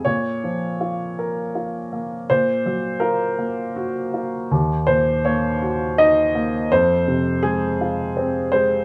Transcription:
<<
  \new Staff \with { instrumentName = "Upright piano" } { \time 3/4 \key bes \minor \tempo 4 = 82 des''2. | c''4 bes'4 r4 | r8 c''8 des''4 ees''4 | c''4 aes'4. c''8 | }
  \new Staff \with { instrumentName = "Upright piano" } { \time 3/4 \key bes \minor bes,8 f8 f'8 bes'8 f'8 bes8 | bes,8 ges8 f'8 bes8 ges'8 f'8 | ees,8 bes,8 bes8 ges'8 ees'8 bes8 | f,8 c8 aes8 f'8 c'8 aes8 | }
>>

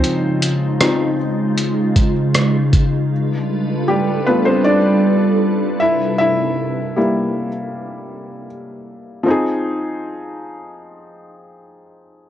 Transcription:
<<
  \new Staff \with { instrumentName = "Ambient pad" } { \time 4/4 \key c \phrygian \tempo 4 = 78 <des aes ees' f'>1 | <g d' f' a' b'>2.~ <g d' f' a' b'>8 r8 | r1 | r1 | }
  \new Staff \with { instrumentName = "Felt piano" } { \time 4/4 \key c \phrygian <c' c''>2~ <c' c''>8. r4 r16 | r4 <g g'>8 b'16 <c' c''>16 <d' d''>4. <e' e''>8 | <e' e''>2. r4 | <f c' ees' aes'>1 | }
  \new Staff \with { instrumentName = "Felt piano" } { \time 4/4 \key c \phrygian <f ees'>4 <f c' ees'>8 r2 r8 | r4. <a b f'>8 r2 | r4 <g bes e'>8 r2 r8 | r1 | }
  \new DrumStaff \with { instrumentName = "Drums" } \drummode { \time 4/4 hh8 hh8 <hh ss>4 hh8 <hh bd>8 <hh ss>8 <hh bd>8 | r4 r4 r4 r4 | r4 r4 r4 r4 | r4 r4 r4 r4 | }
>>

